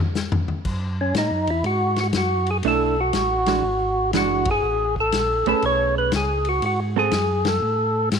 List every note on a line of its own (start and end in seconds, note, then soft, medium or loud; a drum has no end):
0.15 snare medium
0.15 hi-hat pedal medium
0.32 floor tom loud
0.48 floor tom medium
0.65 1.14 F#2 medium
0.65 kick medium
0.65 crash medium
1.01 1.15 C#4 medium
1.14 1.31 A2 medium
1.14 1.50 D#4 medium
1.14 snare medium
1.14 hi-hat pedal medium
1.14 ride medium
1.31 1.48 F#2 medium
1.47 1.63 E2 medium
1.47 1.65 E4 medium
1.47 ride soft
1.64 2.13 G#2 medium
1.64 1.99 F#4 medium
1.64 ride soft
1.96 snare soft
1.96 ride soft
2.00 2.07 F#4 medium
2.13 2.62 F#2 medium
2.13 snare medium
2.13 hi-hat pedal medium
2.13 ride medium
2.17 2.50 F#4 medium
2.46 ride soft
2.51 2.57 G#4 medium
2.63 3.12 B1 medium
2.63 2.94 A3 medium
2.63 2.95 D4 medium
2.63 2.95 E4 medium
2.63 ride medium
2.68 3.00 A4 medium
3.00 4.11 F#4 medium
3.13 3.62 A1 medium
3.13 snare medium
3.13 hi-hat pedal soft
3.13 ride medium
3.46 3.63 E3 soft
3.46 3.63 G#3 soft
3.46 3.63 D4 soft
3.46 3.63 F#4 medium
3.46 snare soft
3.46 ride medium
3.63 4.12 G#1 medium
4.13 4.62 F#1 medium
4.13 4.44 E3 medium
4.13 4.44 G#3 medium
4.13 4.44 D4 medium
4.13 4.44 F#4 medium
4.13 snare medium
4.13 hi-hat pedal medium
4.13 ride medium
4.17 4.49 F#4 medium
4.45 kick medium
4.45 ride medium
4.51 4.95 G#4 medium
4.63 5.11 A1 medium
4.96 kick soft
5.00 5.48 A4 loud
5.12 5.44 A#1 medium
5.12 snare medium
5.12 hi-hat pedal medium
5.12 ride medium
5.46 5.54 A#1 soft
5.46 6.10 A3 medium
5.46 6.10 C#4 soft
5.46 6.10 G#4 medium
5.46 5.65 A4 medium
5.46 6.10 B4 medium
5.46 ride soft
5.62 6.11 B1 medium
5.62 5.95 C#5 medium
5.62 ride soft
5.98 6.13 B4 medium
6.12 6.61 C#2 medium
6.12 snare medium
6.12 hi-hat pedal medium
6.12 ride medium
6.16 6.48 G#4 medium
6.45 ride soft
6.49 6.65 F#4 medium
6.62 7.11 G#2 medium
6.62 6.80 F#4 medium
6.62 ride medium
6.96 7.11 G#3 medium
6.96 7.11 C4 medium
6.96 7.11 F#4 medium
6.96 7.48 G#4 medium
6.96 7.12 A4 medium
7.11 7.61 F#2 medium
7.11 snare medium
7.11 hi-hat pedal medium
7.11 ride medium
7.45 8.09 A4 medium
7.45 snare medium
7.45 ride medium
7.62 8.11 A2 medium
8.12 8.20 G#2 medium
8.12 snare medium
8.12 hi-hat pedal soft
8.12 ride medium